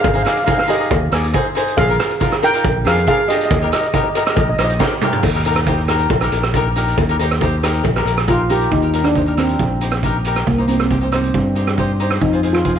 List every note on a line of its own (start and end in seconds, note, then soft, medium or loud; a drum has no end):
0.01 0.24 G#1 loud
0.01 0.06 F5 medium
0.01 kick loud
0.01 closed hi-hat medium
0.01 cowbell medium
0.08 0.14 F5 medium
0.14 0.21 D#4 medium
0.14 0.21 G#4 medium
0.14 0.22 C5 medium
0.14 0.21 F5 medium
0.23 0.38 D#4 medium
0.23 0.39 G#4 medium
0.23 0.39 D5 medium
0.23 0.28 F5 medium
0.23 cross-stick medium
0.23 closed hi-hat medium
0.29 0.36 F5 medium
0.37 0.43 F5 medium
0.37 closed hi-hat medium
0.44 0.60 D#4 medium
0.44 0.60 G#4 medium
0.44 0.61 C5 medium
0.44 0.50 F5 medium
0.44 kick medium
0.44 closed hi-hat medium
0.44 cowbell medium
0.51 0.57 F5 medium
0.58 0.65 F5 medium
0.58 cross-stick medium
0.68 0.75 D#4 medium
0.68 1.52 G4 medium
0.68 0.75 G#4 medium
0.68 0.76 C5 medium
0.68 1.52 D#5 medium
0.68 closed hi-hat medium
0.68 cowbell medium
0.79 0.99 D#4 medium
0.79 0.99 G#4 medium
0.79 1.00 D#5 medium
0.79 closed hi-hat medium
0.91 1.11 D#2 medium
0.91 kick loud
0.91 closed hi-hat medium
0.91 cowbell medium
1.12 1.33 D#2 medium
1.12 1.25 D#4 medium
1.12 1.26 G#4 medium
1.12 1.26 D5 medium
1.12 cross-stick medium
1.12 closed hi-hat medium
1.24 closed hi-hat medium
1.33 1.47 D#4 loud
1.33 1.47 G#4 medium
1.33 1.48 C5 loud
1.33 kick medium
1.33 closed hi-hat medium
1.33 cowbell medium
1.55 1.75 D#4 medium
1.55 1.75 G#4 medium
1.55 1.76 C5 loud
1.55 closed hi-hat medium
1.55 cowbell medium
1.68 closed hi-hat medium
1.77 1.98 A#1 loud
1.77 2.38 G#4 medium
1.77 2.44 F5 medium
1.77 kick loud
1.77 closed hi-hat medium
1.77 cowbell medium
1.89 1.95 D#4 medium
1.89 1.95 F4 medium
1.89 1.96 A#4 medium
1.99 2.12 D#4 medium
1.99 2.13 F4 medium
1.99 2.13 A#4 medium
1.99 cross-stick medium
1.99 closed hi-hat medium
2.11 closed hi-hat medium
2.20 2.33 D#4 medium
2.20 2.34 F4 medium
2.20 2.35 A#4 medium
2.20 kick medium
2.20 closed hi-hat medium
2.20 cowbell medium
2.32 cross-stick medium
2.42 2.49 D#4 medium
2.42 2.50 F4 medium
2.42 2.83 A#4 medium
2.42 2.50 A#4 medium
2.42 2.88 G5 loud
2.42 closed hi-hat medium
2.42 cowbell medium
2.53 2.64 D#4 medium
2.53 2.64 F4 medium
2.53 2.65 A#4 medium
2.53 closed hi-hat medium
2.64 2.85 A#1 medium
2.64 kick loud
2.64 closed hi-hat medium
2.64 cowbell medium
2.85 3.06 F2 medium
2.85 2.98 D4 medium
2.85 2.99 F4 medium
2.85 3.07 G#4 medium
2.85 2.99 A#4 medium
2.85 3.07 F5 medium
2.85 cross-stick medium
2.85 closed hi-hat medium
2.97 closed hi-hat medium
3.07 3.20 D4 medium
3.07 3.21 F4 medium
3.07 3.28 G#4 medium
3.07 3.21 A#4 medium
3.07 3.30 F5 loud
3.07 kick medium
3.07 closed hi-hat medium
3.07 cowbell medium
3.28 3.48 D4 medium
3.28 3.48 F4 medium
3.28 3.36 G4 medium
3.28 3.49 G4 medium
3.28 3.36 D#5 medium
3.28 closed hi-hat medium
3.28 cowbell medium
3.37 3.44 D#5 medium
3.37 closed hi-hat medium
3.45 3.52 D#5 medium
3.51 3.71 D#2 loud
3.51 3.59 D#5 soft
3.51 kick loud
3.51 closed hi-hat medium
3.51 cowbell medium
3.60 3.68 D#4 medium
3.60 3.68 G4 medium
3.60 3.69 A#4 medium
3.60 3.66 D#5 medium
3.67 3.74 D#5 medium
3.72 3.85 D#4 medium
3.72 3.86 G4 medium
3.72 3.86 A#4 medium
3.72 3.80 D#5 medium
3.72 cross-stick medium
3.72 closed hi-hat medium
3.81 3.86 D#5 medium
3.81 closed hi-hat medium
3.87 3.95 D#5 medium
3.94 4.07 D#4 medium
3.94 4.07 G4 medium
3.94 4.08 A#4 medium
3.94 4.03 D#5 soft
3.94 kick medium
3.94 closed hi-hat medium
3.94 cowbell medium
4.04 4.08 D#5 medium
4.10 4.17 D#5 soft
4.15 4.22 D#4 medium
4.15 4.22 G4 medium
4.15 4.23 A#4 medium
4.15 4.25 D#5 medium
4.15 closed hi-hat medium
4.15 cowbell medium
4.27 4.46 D#4 medium
4.27 4.47 G4 medium
4.27 4.47 A#4 medium
4.27 4.33 D#5 medium
4.27 cross-stick medium
4.27 closed hi-hat medium
4.35 4.57 A#1 medium
4.35 4.40 D#5 medium
4.35 kick loud
4.35 closed hi-hat medium
4.35 cowbell medium
4.41 4.48 D#5 soft
4.49 4.56 D#5 medium
4.57 4.79 A#1 medium
4.57 4.72 D#4 medium
4.57 4.72 G4 medium
4.57 4.73 C5 medium
4.57 4.63 D#5 medium
4.57 cross-stick medium
4.57 closed hi-hat medium
4.65 4.71 D#5 medium
4.70 closed hi-hat medium
4.79 4.93 D#4 medium
4.79 4.93 G4 medium
4.79 4.94 A#4 medium
4.79 kick medium
4.79 snare medium
4.79 cowbell medium
5.01 5.22 D#4 medium
5.01 5.22 G4 medium
5.01 5.23 A#4 loud
5.01 mid tom medium
5.01 cowbell medium
5.13 floor tom medium
5.23 6.06 D#2 loud
5.23 kick loud
5.23 crash medium
5.23 cowbell medium
5.34 5.41 D#4 medium
5.34 5.41 G4 medium
5.34 5.42 A#4 medium
5.45 5.59 D#4 medium
5.45 5.59 G4 medium
5.45 5.60 A#4 medium
5.45 closed hi-hat medium
5.45 cowbell medium
5.56 cross-stick medium
5.56 closed hi-hat medium
5.66 5.80 D#4 medium
5.66 5.80 G4 medium
5.66 5.81 C5 medium
5.66 kick medium
5.66 closed hi-hat medium
5.66 cowbell medium
5.88 6.08 D#4 medium
5.88 6.09 G4 medium
5.88 6.09 A#4 medium
5.88 cross-stick medium
5.88 closed hi-hat medium
5.99 closed hi-hat medium
6.10 6.31 A#1 medium
6.10 kick loud
6.10 closed hi-hat medium
6.10 cowbell medium
6.21 6.41 D#4 medium
6.21 6.42 G4 medium
6.21 6.42 A#4 medium
6.21 cross-stick medium
6.32 6.93 A#1 medium
6.32 closed hi-hat medium
6.32 cowbell medium
6.43 cross-stick medium
6.43 closed hi-hat medium
6.54 6.68 D#4 medium
6.54 6.68 G4 medium
6.54 6.68 A#4 loud
6.54 kick medium
6.54 closed hi-hat medium
6.54 cowbell medium
6.76 6.95 D#4 medium
6.76 6.96 G4 medium
6.76 6.96 A#4 medium
6.76 closed hi-hat medium
6.88 closed hi-hat medium
6.98 7.81 D#2 loud
6.98 kick loud
6.98 closed hi-hat medium
6.98 cowbell medium
7.09 7.15 D#4 medium
7.09 7.16 G4 medium
7.09 7.16 A#4 medium
7.19 7.33 D#4 medium
7.19 7.33 G4 medium
7.19 7.33 C5 medium
7.19 closed hi-hat medium
7.19 cowbell medium
7.31 cross-stick medium
7.31 closed hi-hat medium
7.41 7.54 D#4 medium
7.41 7.55 G4 medium
7.41 7.55 C5 medium
7.41 kick medium
7.41 closed hi-hat medium
7.41 cowbell medium
7.63 7.83 D#4 medium
7.63 7.83 G4 medium
7.63 7.84 A#4 medium
7.63 cross-stick medium
7.63 closed hi-hat medium
7.74 closed hi-hat medium
7.84 8.05 A#1 medium
7.84 kick loud
7.84 closed hi-hat medium
7.84 cowbell medium
7.96 8.15 D#4 medium
7.96 8.16 G4 medium
7.96 8.16 A#4 medium
7.96 cross-stick medium
8.05 8.67 A#1 medium
8.05 closed hi-hat medium
8.05 cowbell medium
8.17 cross-stick medium
8.17 closed hi-hat medium
8.28 8.41 D#4 medium
8.28 8.51 F4 loud
8.28 8.42 G4 medium
8.28 8.42 A#4 medium
8.28 kick medium
8.28 closed hi-hat soft
8.28 cowbell medium
8.50 8.69 D#4 medium
8.50 8.70 G4 medium
8.50 8.73 G4 medium
8.50 8.70 A#4 medium
8.50 closed hi-hat medium
8.61 closed hi-hat medium
8.71 9.55 D#2 medium
8.71 9.06 D#4 medium
8.71 kick medium
8.71 closed hi-hat soft
8.82 8.89 D#4 medium
8.82 8.89 G4 medium
8.82 8.90 A#4 medium
8.93 9.07 D#4 medium
8.93 9.07 G4 medium
8.93 9.07 A#4 medium
8.93 closed hi-hat medium
9.04 9.38 D4 medium
9.04 cross-stick medium
9.04 closed hi-hat soft
9.15 9.22 D#4 medium
9.15 9.22 G4 medium
9.15 9.23 C5 medium
9.15 kick medium
9.15 closed hi-hat medium
9.26 9.33 D#4 medium
9.26 9.33 G4 medium
9.26 9.34 A#4 medium
9.37 10.50 C4 medium
9.37 9.63 D#4 medium
9.37 9.64 G4 medium
9.37 9.64 A#4 medium
9.37 cross-stick medium
9.37 closed hi-hat medium
9.49 closed hi-hat medium
9.59 10.43 A#1 medium
9.59 kick medium
9.59 closed hi-hat medium
9.81 9.94 D#4 medium
9.81 9.94 G4 soft
9.81 9.95 C5 medium
9.81 closed hi-hat medium
9.92 cross-stick medium
9.92 closed hi-hat medium
10.03 10.16 D#4 medium
10.03 10.17 G4 medium
10.03 10.17 A#4 medium
10.03 kick medium
10.03 closed hi-hat medium
10.25 10.45 D#4 medium
10.25 10.45 G4 medium
10.25 10.46 A#4 medium
10.25 closed hi-hat medium
10.36 cross-stick medium
10.36 closed hi-hat medium
10.47 11.30 C2 medium
10.47 10.57 A#3 medium
10.47 kick medium
10.47 closed hi-hat medium
10.58 10.64 D#4 medium
10.58 10.65 G4 medium
10.58 10.65 C5 medium
10.68 10.75 C4 medium
10.68 10.81 D#4 medium
10.68 10.82 G4 medium
10.68 10.82 C5 medium
10.68 closed hi-hat medium
10.76 10.83 C4 soft
10.76 cross-stick medium
10.76 closed hi-hat soft
10.85 10.90 C4 soft
10.90 10.97 C4 soft
10.90 10.97 D#4 medium
10.90 10.97 G4 medium
10.90 10.98 C5 medium
10.90 kick medium
10.90 closed hi-hat medium
10.98 11.05 C4 soft
10.98 11.07 D#4 medium
10.98 11.08 G4 soft
11.03 11.13 C4 soft
11.03 11.09 C5 medium
11.12 11.38 D#4 medium
11.12 11.39 G4 medium
11.12 11.39 C5 medium
11.12 cross-stick medium
11.12 closed hi-hat medium
11.16 11.21 C4 soft
11.22 11.28 C4 soft
11.22 closed hi-hat medium
11.29 11.36 C4 soft
11.34 12.17 G2 medium
11.34 11.43 C4 soft
11.34 kick medium
11.34 closed hi-hat soft
11.44 11.51 C4 soft
11.55 11.69 D#4 medium
11.55 11.69 G4 medium
11.55 11.70 C5 medium
11.55 closed hi-hat medium
11.67 cross-stick medium
11.67 closed hi-hat medium
11.77 11.91 D#4 medium
11.77 11.91 G4 medium
11.77 11.92 C5 medium
11.77 kick medium
11.77 closed hi-hat medium
12.00 12.19 D#4 medium
12.00 12.20 G4 medium
12.00 12.20 C5 medium
12.00 closed hi-hat medium
12.10 cross-stick medium
12.10 closed hi-hat soft
12.21 12.79 F2 medium
12.21 12.55 D#4 medium
12.21 kick medium
12.21 closed hi-hat soft
12.33 12.39 F4 medium
12.33 12.39 G#4 medium
12.33 12.40 C5 medium
12.43 12.56 F4 medium
12.43 12.57 G#4 medium
12.43 12.57 C5 medium
12.43 closed hi-hat medium
12.53 12.79 F4 medium
12.53 cross-stick medium
12.53 closed hi-hat soft
12.65 12.71 F4 medium
12.65 12.72 G#4 medium
12.65 12.72 C5 medium
12.65 kick medium
12.65 closed hi-hat medium
12.75 12.79 F4 medium